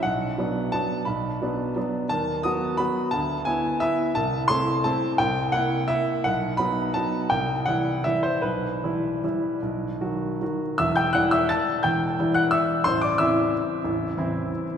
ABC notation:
X:1
M:3/4
L:1/8
Q:1/4=173
K:Bm
V:1 name="Grand piano"
f4 a2 | b3 z3 | [K:Em] a2 ^d'2 b2 | a2 ^g2 e2 |
a2 c'2 a2 | g2 f2 e2 | f2 b2 a2 | g2 f2 e c |
B6- | B4- B z | [ee'] [gg'] [ff'] [ee'] [aa']2 | [gg']3 [ff'] [ee']2 |
[cc'] [dd'] [ee']4- | [ee']4- [ee'] z |]
V:2 name="Grand piano" clef=bass
B,,,2 [F,B,D]2 [F,B,D]2 | B,,,2 [F,B,D]2 [F,B,D]2 | [K:Em] ^D,,2 [F,B,F]2 [F,B,F]2 | D,,2 [B,E]2 [B,E]2 |
C,,2 [A,CE]2 [A,CE]2 | C,,2 [_B,E]2 [B,E]2 | B,,,2 [F,B,^D]2 [F,B,D]2 | C,,2 [E,G,E]2 [E,G,E]2 |
B,,,2 [E,G,E]2 [E,G,E]2 | B,,,2 [^D,F,F]2 [D,F,F]2 | [E,,,E,,]2 [E,G,E]4 | [E,,,E,,]2 [E,G,E]4 |
[A,,,,A,,,]2 [E,CE]4 | [A,,,,A,,,]2 [E,CE]4 |]